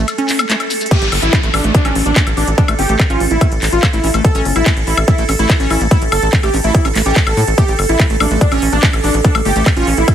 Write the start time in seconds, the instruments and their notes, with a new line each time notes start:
Already playing: ambient pad A4
0.08 closed hi-hat, high woodblock, shekere
0.18 acid bass C#4, closed hi-hat
0.28 clap, open hi-hat, shekere
0.39 acid bass A3, closed hi-hat, high woodblock, shekere
0.49 acid bass A3, clap, closed hi-hat, shekere
0.60 closed hi-hat, high woodblock
0.70 open hi-hat, shekere
0.81 closed hi-hat, shekere
0.86 closed hi-hat
0.91 acid bass A3, analog synth lead G4, ambient pad A4, kick, closed hi-hat, crash, downlifter
1.02 analog synth bass A1, closed hi-hat
1.12 analog synth bass G1, open hi-hat, high woodblock
1.22 analog synth bass A1, analog synth lead E4, closed hi-hat
1.33 acid bass G3, kick, clap, closed hi-hat
1.43 analog synth bass A1, acid bass A3, closed hi-hat
1.54 analog synth bass A1, acid bass C#4, analog synth lead D4, open hi-hat, high woodblock
1.64 analog synth bass A1, acid bass A3, closed hi-hat
1.75 analog synth lead D4, kick, closed hi-hat
1.85 analog synth bass A1, acid bass C#4, closed hi-hat, high woodblock
1.95 analog synth bass A1, open hi-hat
2.06 analog synth bass A1, acid bass A3, analog synth lead D4, closed hi-hat
2.16 acid bass A3, kick, clap, closed hi-hat
2.27 analog synth bass A1, closed hi-hat, high woodblock
2.37 analog synth bass A1, analog synth lead D4, open hi-hat
2.47 analog synth bass A1, closed hi-hat
2.58 acid bass G3, analog synth lead D4, kick, closed hi-hat
2.68 analog synth bass A1, acid bass A3, closed hi-hat, high woodblock
2.79 analog synth bass G1, acid bass C#4, analog synth lead G4, open hi-hat
2.89 analog synth bass A1, acid bass A3, closed hi-hat
3.00 kick, clap, closed hi-hat, high woodblock
3.10 analog synth bass A1, acid bass C#4, analog synth lead F4, closed hi-hat
3.20 analog synth bass A1, open hi-hat
3.31 analog synth bass A1, acid bass A3, analog synth lead E4, closed hi-hat
3.41 acid bass A3, kick, closed hi-hat, high woodblock
3.52 analog synth bass A1, closed hi-hat
3.62 analog synth bass A1, clap, open hi-hat
3.72 analog synth bass A1, analog synth lead F4, closed hi-hat
3.83 acid bass G3, kick, clap, closed hi-hat, high woodblock
3.93 analog synth bass A1, acid bass A3, analog synth lead E4, closed hi-hat
4.04 analog synth bass A1, acid bass C#4, open hi-hat
4.14 analog synth bass A1, acid bass A3, closed hi-hat, high woodblock
4.25 analog synth lead A4, kick, closed hi-hat
4.35 analog synth bass A1, acid bass C#4, closed hi-hat
4.45 analog synth bass G1, open hi-hat
4.56 analog synth bass A1, acid bass A3, analog synth lead E4, closed hi-hat, high woodblock
4.66 acid bass A3, kick, clap, closed hi-hat
4.77 analog synth bass A1, closed hi-hat
4.87 analog synth bass A1, analog synth lead E4, open hi-hat
4.97 analog synth bass A1, closed hi-hat, high woodblock
5.08 acid bass G3, analog synth lead E4, kick, closed hi-hat
5.18 analog synth bass A1, acid bass A3, closed hi-hat
5.29 analog synth bass A1, acid bass C#4, open hi-hat, high woodblock
5.39 analog synth bass A1, acid bass A3, analog synth lead E4, closed hi-hat
5.50 kick, clap, closed hi-hat
5.60 analog synth bass A1, acid bass C#4, closed hi-hat
5.70 analog synth bass A1, analog synth lead E4, open hi-hat, high woodblock
5.81 analog synth bass A1, acid bass A3, closed hi-hat
5.91 acid bass A3, analog synth lead E4, kick, closed hi-hat
6.02 analog synth bass A1, closed hi-hat
6.12 analog synth bass G1, analog synth lead A4, open hi-hat, high woodblock
6.22 analog synth bass A1, closed hi-hat
6.33 acid bass G3, kick, clap, closed hi-hat
6.43 analog synth bass A1, acid bass A3, analog synth lead G4, closed hi-hat, high woodblock
6.54 analog synth bass A1, acid bass C#4, open hi-hat
6.64 analog synth bass A1, acid bass A3, analog synth lead E4, closed hi-hat
6.75 kick, closed hi-hat
6.85 analog synth bass A1, acid bass C#4, closed hi-hat, high woodblock
6.95 analog synth bass A1, acid bass A3, clap, open hi-hat
7.06 analog synth bass A1, acid bass C#4, analog synth lead G4, closed hi-hat
7.16 acid bass A3, kick, clap, closed hi-hat
7.27 analog synth bass A1, analog synth lead A4, closed hi-hat, high woodblock
7.37 analog synth bass A2, acid bass A3, open hi-hat
7.47 analog synth bass A1, closed hi-hat
7.58 acid bass A3, analog synth lead G4, kick, closed hi-hat
7.68 analog synth bass A1, closed hi-hat
7.79 analog synth bass G1, open hi-hat, high woodblock
7.89 analog synth bass A1, analog synth lead E4, closed hi-hat
8.00 acid bass G3, kick, clap, closed hi-hat
8.10 analog synth bass A1, acid bass A3, closed hi-hat
8.20 analog synth bass A1, acid bass A3, analog synth lead D4, open hi-hat, high woodblock
8.31 analog synth bass A1, acid bass A3, closed hi-hat
8.41 analog synth lead D4, kick, closed hi-hat
8.52 analog synth bass A1, acid bass C#4, closed hi-hat, high woodblock
8.62 analog synth bass A1, open hi-hat
8.72 analog synth bass A1, acid bass A3, analog synth lead D4, closed hi-hat
8.83 acid bass A3, kick, clap, closed hi-hat
8.93 analog synth bass A1, closed hi-hat, high woodblock
9.04 analog synth bass A1, analog synth lead D4, open hi-hat
9.14 analog synth bass A1, closed hi-hat
9.24 acid bass G3, analog synth lead D4, kick, closed hi-hat
9.35 analog synth bass A1, acid bass A3, closed hi-hat, high woodblock
9.45 analog synth bass G1, acid bass A3, analog synth lead G4, open hi-hat
9.56 analog synth bass A1, acid bass A3, closed hi-hat
9.66 kick, clap, closed hi-hat, high woodblock
9.77 analog synth bass A1, acid bass C#4, analog synth lead F4, closed hi-hat
9.87 analog synth bass A1, open hi-hat
9.97 analog synth bass A1, acid bass A3, analog synth lead E4, closed hi-hat
10.08 acid bass A3, kick, closed hi-hat, high woodblock